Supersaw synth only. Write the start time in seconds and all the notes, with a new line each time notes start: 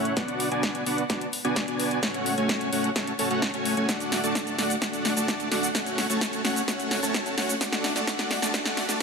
Already playing: A3 C#4 E4 C#5 F#5
0.17 B3 D4 F#4 D5 F#5
0.52 B3 D4 F#4 D5 G#5
0.86 B3 D4 F#4 D5 F#5
1.10 B3 D4 F#4 D5 A5
1.45 B3 D4 F#4 D5 G#5
1.68 B3 D4 F#4 D5 G#5
2.03 A3 C#4 F#4 C#5 F#5
2.38 A3 C#4 F#4 C#5 G#5
2.73 A3 C#4 F#4 C#5 F#5
2.96 A3 C#4 F#4 C#5 A5
3.19 A3 C#4 F#4 C#5 A5
3.31 A3 C#4 F#4 C#5 F#5
3.54 A3 C#4 F#4 C#5 G#5
3.77 A3 C#4 F#4 C#5 G#5
3.89 A3 D4 F#4 D5 F#5
4.24 A3 D4 F#4 D5 A5
4.59 A3 D4 F#4 D5 F#5
4.82 A3 D4 F#4 D5 F#5
5.17 A3 D4 F#4 D5 A5
5.52 A3 D4 F#4 D5 F#5
5.75 A3 C#4 F#4 C#5 F#5
6.10 A3 C#4 F#4 C#5 A5
6.45 A3 C#4 F#4 C#5 F#5
6.68 A3 C#4 F#4 C#5 F#5
7.03 A3 C#4 F#4 C#5 A5
7.38 A3 C#4 F#4 C#5 F#5
7.61 A3 D4 F#4 D5 F#5
7.96 A3 D4 F#4 D5 A5
8.07 A3 D4 F#4 D5 F#5
8.42 A3 D4 F#4 D5 A5
8.54 A3 D4 F#4 D5 F#5
8.89 A3 D4 F#4 D5 A5